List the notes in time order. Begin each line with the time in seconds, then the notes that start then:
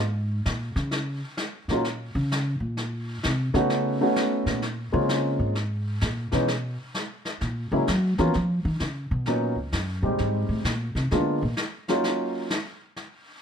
Already playing: G#2
0.46 A#2, snare
0.76 C#3, snare
0.91 brush sweep, snare
1.37 snare
1.68 A#2 F#3 A#3 C#4 D#4, snare
1.72 F4
1.84 brush sweep, snare
2.15 C#3
2.32 snare
2.60 A#2
2.77 brush sweep, snare
3.23 C3, snare
3.54 C#3 A3 B3 C#4 D#4 F#4, snare
3.70 brush sweep, snare
4.01 A3 B3 C#4 D#4 F#4
4.16 snare
4.46 A#2, snare
4.62 brush sweep, snare
4.92 C#3 G#3 A#3 C4 C#4 F4
5.09 snare
5.39 G#2
5.55 brush sweep, snare
6.01 A#2, snare
6.32 B2 E3 G#3 B3 C#4 D#4, snare
6.48 brush sweep, snare
6.94 snare
7.25 snare
7.41 A#2, brush sweep, snare
7.72 C#3 F#3 G#3 A#3 C#4 E4
7.88 F#3, snare
8.18 E3 F#3 A#3 B3 C#4 F4, snare
8.34 F3, brush sweep, snare
8.65 D#3
8.80 C#3, snare
9.11 B2
9.26 A#2 F#3 A#3 B3 C#4 D#4, brush sweep, snare
9.56 C#2
9.73 F#2, snare
10.03 A#2 G3 G#3 C4 D#4 G4
10.18 G#2, brush sweep, snare
10.49 A2
10.64 A#2, snare
10.95 C3, snare
11.11 D3 G#3 A#3 B3 D4 F4, brush sweep, snare
11.42 A#2
11.57 snare
11.88 F#3 A#3 C#4 D#4 F4, snare
12.04 brush sweep, snare
12.50 snare
12.96 brush sweep, snare